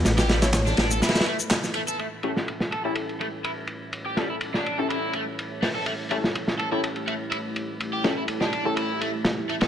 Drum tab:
RD |x-x-x-x-x---x---xxxxx---x---x---|x---x---x---x---x-x-x---x---x---|x---x---x---x---x---x---x-------|x---x---x---x---x-x-x---x---x---|
HH |--------------------------------|--------------------------------|----------------------------o---|--------------------------------|
SH |x-x---x-x-x---x-x-x---x-x-x---x-|--------------------------------|--------------------------------|--------------------------------|
CP |--------x---------------x-------|--------------------------------|--------------------------------|--------------------------------|
SD |o-o-o-o-o-o-o---oooo----o-o-----|------o---o---------------------|----o-----o-----------------o---|------o---o---------------------|

RD |x---x---x---x---x---x---x---x-x-|
HH |--------------------------------|
SH |--------------------------------|
CP |--------------------------------|
SD |----o-----o-------------o-----o-|